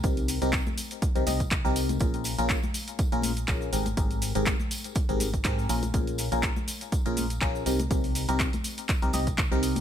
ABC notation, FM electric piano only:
X:1
M:4/4
L:1/16
Q:"Swing 16ths" 1/4=122
K:Bbdor
V:1 name="FM electric piano"
[C,CEGB]3 [C,CEGB]2 z4 [C,CEGB] [C,CEGe] z2 [C,CEGB]3 | [B,,DFAB]3 [B,,DFAB]2 z4 [B,,DFAB]2 z [DFAB]2 [A,,CGAB] z | [A,,CGAB]3 [A,,CGAB]2 z4 [A,,CGAB]2 z [CGAB]2 [B,,DFAB] z | [B,,DFAB]3 [B,,DFAB]2 z4 [B,,DFAB]2 z [DFAB]2 [C,CEGB] z |
[C,CEGB]3 [C,CEGB]2 z4 [C,CEGB] [C,CEGe] z2 [C,CEGB]3 |]